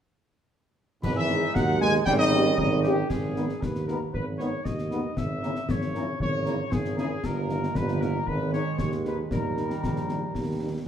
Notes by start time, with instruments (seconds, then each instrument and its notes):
1.03 tuba G#1, euphonium B2, trombone section G#3 D#4, trumpet section B4, concert bass drum, crash
1.15 euphonium E3, trumpet section E5
1.30 french horn section G#3 D#4 G#4, snare
1.54 tuba D#2, euphonium F#3, trumpet section F#5, concert bass drum, snare
1.81 euphonium G#3, french horn section G#3 D#4 G#4, trumpet section G#5, snare
1.93 snare
2.06 tuba G#1, trombone section G3 C#4, euphonium G3, trumpet section G5, concert bass drum, snare
2.18 euphonium D#3, trumpet section D#5
2.32 french horn section A#3 C#4 G4, snare
2.45 snare
2.57 tuba G#1, euphonium D#3, trumpet section D#5, concert bass drum
2.83 french horn section A#3 C#4 G4, trumpet section G4, snare
3.09 tuba G#1, trumpet section G#4, concert bass drum, snare, crash
3.36 trombone section D#3 B3, french horn section G#3 B3 D#4, snare
3.49 snare
3.61 tuba D#2, trumpet section B4, concert bass drum, snare
3.75 snare
3.86 trombone section D#3 B3, french horn section G#3 B3 D#4, trumpet section A#4, snare
4.13 tuba G#1, trumpet section B4, concert bass drum
4.38 trombone section D#3 B3, french horn section G#3 B3 D#4, trumpet section C#5, snare
4.65 tuba D#2, trumpet section D#5, concert bass drum, snare
4.78 snare
4.91 trombone section D#3 B3, french horn section G#3 B3 D#4, snare
5.16 tuba G#1, trumpet section E5, concert bass drum, snare
5.42 trombone section C#3 A#3, french horn section A#3 C#4 E4, snare
5.56 snare
5.69 tuba G#1, trumpet section C#5, concert bass drum, snare
5.82 snare
5.95 trombone section C#3 A#3, french horn section A#3 C#4 E4, snare
6.20 tuba G#1, trumpet section C#5, concert bass drum
6.45 trombone section C#3 A#3, french horn section A#3 C#4 E4, snare
6.72 tuba G#1, trumpet section G#4, concert bass drum, snare
6.85 snare
6.97 trombone section C#3 A#3, french horn section A#3 C#4 E4, trumpet section G#4, snare
7.23 tuba G1, trombone section D#3 A#3, trumpet section A#4, concert bass drum, snare, crash
7.49 french horn section A#3 D#4, snare
7.63 snare
7.75 tuba G1, trumpet section B4, concert bass drum, snare
7.88 snare
8.01 french horn section A#3 D#4, trumpet section A#4, snare
8.27 tuba G#1, trombone section D#3 G#3, trumpet section B4, concert bass drum
8.53 french horn section G#3 D#4, trumpet section C#5, snare
8.78 tuba D#2, trumpet section C#5, concert bass drum, snare
8.92 snare
9.05 french horn section G#3 D#4, trumpet section B4, snare
9.30 tuba D#2, trombone section D#3 G3, trumpet section A#4, concert bass drum, snare
9.57 french horn section G3 D#4, snare
9.70 snare
9.82 tuba A#1, concert bass drum, snare
9.96 snare
10.09 french horn section G3 D#4, snare
10.34 tuba D#2, concert bass drum, snare
10.61 french horn section G3 D#4